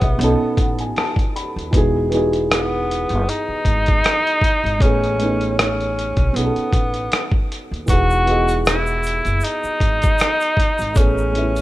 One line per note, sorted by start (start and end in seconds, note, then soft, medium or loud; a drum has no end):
0.00 0.16 B1 medium
0.00 0.20 A2 medium
0.00 0.21 A3 medium
0.00 0.19 B3 medium
0.00 1.35 B3 loud
0.00 0.20 C#4 medium
0.00 0.21 G#4 medium
0.00 0.20 C#5 medium
0.00 0.18 E5 medium
0.00 kick medium
0.00 closed hi-hat soft
0.17 0.38 B1 loud
0.17 1.42 B2 medium
0.17 1.43 B3 medium
0.17 1.44 C#4 medium
0.17 0.55 D#5 medium
0.17 closed hi-hat medium
0.22 1.44 D#4 medium
0.22 1.45 A4 loud
0.41 muted upright bass stroke soft
0.57 0.91 A1 medium
0.57 0.78 F#5 medium
0.57 kick medium
0.57 closed hi-hat medium
0.79 0.95 G#5 medium
0.79 closed hi-hat soft
0.96 1.32 A5 medium
0.96 cross-stick loud
0.96 closed hi-hat medium
1.16 kick medium
1.16 closed hi-hat soft
1.36 1.71 B5 medium
1.36 closed hi-hat medium
1.56 1.71 D#2 medium
1.56 closed hi-hat soft
1.71 3.06 E1 loud
1.71 2.03 E3 medium
1.71 2.03 B3 medium
1.71 2.04 D#4 medium
1.71 kick loud
1.71 closed hi-hat medium
1.76 2.05 F#4 medium
1.76 2.06 G#4 loud
2.09 3.29 E3 medium
2.09 3.30 B3 medium
2.09 3.31 D#4 medium
2.09 closed hi-hat medium
2.14 3.32 F#4 medium
2.14 3.32 G#4 medium
2.33 closed hi-hat soft
2.52 3.31 B3 medium
2.52 cross-stick loud
2.52 closed hi-hat medium
2.91 closed hi-hat medium
3.09 3.24 F#1 medium
3.09 closed hi-hat soft
3.29 4.84 D#4 loud
3.29 closed hi-hat medium
3.49 muted upright bass stroke soft
3.65 3.98 G#1 medium
3.65 kick medium
3.65 closed hi-hat medium
3.86 kick medium
3.86 closed hi-hat soft
4.04 cross-stick loud
4.04 closed hi-hat medium
4.27 closed hi-hat soft
4.41 kick medium
4.41 closed hi-hat medium
4.64 4.78 G#1 medium
4.64 closed hi-hat soft
4.79 6.14 A1 loud
4.79 5.10 A2 medium
4.79 5.11 A3 medium
4.79 5.12 B3 medium
4.79 5.58 C#4 loud
4.79 kick loud
4.79 closed hi-hat medium
4.83 5.12 C#4 medium
4.83 5.13 G#4 medium
5.04 closed hi-hat soft
5.17 6.33 A2 medium
5.17 6.34 A3 medium
5.17 6.32 B3 medium
5.17 closed hi-hat medium
5.21 6.34 C#4 medium
5.21 6.35 D#4 medium
5.41 closed hi-hat soft
5.59 6.37 C#4 medium
5.59 cross-stick loud
5.59 closed hi-hat medium
5.81 closed hi-hat soft
5.99 closed hi-hat medium
6.17 6.32 B1 medium
6.17 kick medium
6.17 closed hi-hat soft
6.32 6.53 B1 loud
6.32 7.57 B2 medium
6.32 7.58 B3 medium
6.32 7.50 B3 medium
6.32 7.59 C#4 medium
6.36 7.59 D#4 medium
6.36 6.43 G#4 medium
6.36 closed hi-hat medium
6.44 7.63 A4 medium
6.56 closed hi-hat soft
6.73 7.06 A1 medium
6.73 kick medium
6.73 closed hi-hat medium
6.94 closed hi-hat soft
7.12 cross-stick loud
7.12 closed hi-hat medium
7.31 kick loud
7.52 closed hi-hat medium
7.71 7.86 D#2 medium
7.71 closed hi-hat soft
7.86 9.21 E1 loud
7.86 8.18 E3 medium
7.86 8.19 B3 medium
7.86 8.19 D#4 medium
7.86 8.62 F#4 loud
7.86 kick loud
7.86 closed hi-hat medium
7.86 shaker medium
7.91 8.20 F#4 medium
7.91 8.21 G#4 medium
8.10 shaker soft
8.25 9.45 E3 medium
8.25 9.45 B3 medium
8.25 9.46 D#5 medium
8.25 closed hi-hat medium
8.29 9.47 F#4 medium
8.29 9.48 G#4 medium
8.48 closed hi-hat soft
8.48 shaker soft
8.65 9.46 E4 medium
8.65 cross-stick loud
8.65 closed hi-hat medium
8.65 shaker medium
8.86 shaker soft
9.03 closed hi-hat medium
9.03 shaker soft
9.25 9.40 F#1 medium
9.25 closed hi-hat soft
9.25 shaker soft
9.40 10.99 D#4 loud
9.40 closed hi-hat medium
9.40 shaker medium
9.64 muted upright bass stroke soft
9.64 shaker soft
9.80 10.14 G#1 medium
9.80 kick medium
9.80 closed hi-hat medium
10.02 kick loud
10.02 closed hi-hat soft
10.02 shaker soft
10.18 cross-stick loud
10.18 closed hi-hat medium
10.18 shaker medium
10.40 closed hi-hat soft
10.40 shaker soft
10.57 kick medium
10.57 closed hi-hat medium
10.78 10.93 G#1 medium
10.78 closed hi-hat soft
10.78 shaker soft
10.94 11.62 A1 loud
10.94 11.26 A2 medium
10.94 11.26 A3 medium
10.94 11.27 B3 medium
10.94 11.62 C#4 loud
10.94 kick loud
10.94 closed hi-hat medium
10.94 shaker medium
10.98 11.28 C#4 medium
10.98 11.29 G#4 medium
11.18 shaker soft
11.32 11.62 A2 medium
11.32 11.62 A3 medium
11.32 11.62 B3 medium
11.32 closed hi-hat medium
11.37 11.62 C#4 medium
11.37 11.62 E4 medium
11.56 closed hi-hat soft
11.56 shaker soft